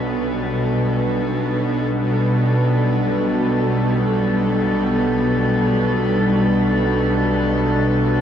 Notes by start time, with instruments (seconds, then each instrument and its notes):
Already playing: synth drone B1 B2 D4, cello section B2 G3 B3 A4 B4